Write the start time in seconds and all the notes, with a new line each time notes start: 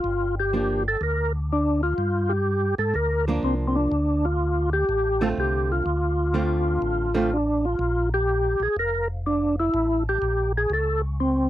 Already playing: F4
0.04 G1
0.40 G4
0.53 F3 A#3 D4
0.88 A4
1.01 D2 A#4
1.52 D4
1.83 F4
1.98 G2
2.29 G4
2.78 G#2 A4
2.95 D2 A#4
3.28 F3 A#3 D4
3.43 C2 C4
3.68 C4
3.76 D4
3.92 D2
4.25 F4
4.73 G4
4.89 A1
5.21 D3 A3 C4 F4 A4
5.38 C2 G4
5.72 F4
5.86 D2
6.34 D3 A3 C4 F4
6.82 A1
7.14 D3 A3 C4 F4
7.33 D4
7.65 F4
7.79 A#1
8.14 G4
8.60 A#1 G#4
8.76 F1 A#4
9.26 D4
9.60 E4
9.74 A1
10.09 G4
10.22 A#1
10.57 G#4
10.70 C#2 A4
11.20 C4